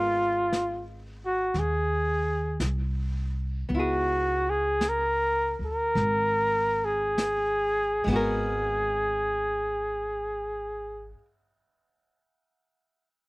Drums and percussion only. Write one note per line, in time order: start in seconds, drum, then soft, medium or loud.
0.53 brush sweep soft
0.53 snare soft
0.53 hi-hat pedal soft
1.54 brush sweep soft
1.54 snare soft
2.60 brush sweep soft
2.60 snare soft
2.60 hi-hat pedal soft
3.70 brush sweep soft
4.81 brush sweep soft
4.81 snare soft
4.81 hi-hat pedal soft
5.96 brush sweep soft
5.96 snare soft
7.18 brush sweep soft
7.18 snare soft
7.18 hi-hat pedal soft
8.07 kick soft
8.07 ride soft